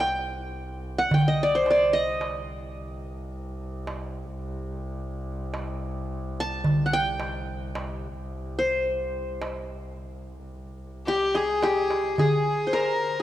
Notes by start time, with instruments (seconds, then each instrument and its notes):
Already playing: double bass C2
0.00 qanun G5, darbuka tek
0.98 qanun F#5
1.11 double bass C2, qanun G5, darbuka dum
1.28 qanun D#5
1.43 qanun D5
1.55 qanun C5
1.66 darbuka tek
1.71 qanun D5
1.93 qanun D#5
2.21 darbuka tek
2.77 darbuka ka
3.87 darbuka tek
5.54 darbuka tek
6.40 qanun A5
6.64 darbuka dum
6.86 qanun F#5
6.93 qanun G5
7.20 darbuka tek
7.75 darbuka tek
8.59 qanun C5
8.86 darbuka ka
9.41 darbuka tek
9.97 darbuka ka
10.52 darbuka ka
11.07 violin G4, qanun G4, darbuka tek
11.35 qanun G#4, violin G#4, darbuka ka
11.63 qanun G4, darbuka tek
11.90 darbuka ka
12.18 violin G#4, qanun G#4, darbuka dum
12.67 qanun C5
12.73 qanun A#4, violin A#4, darbuka tek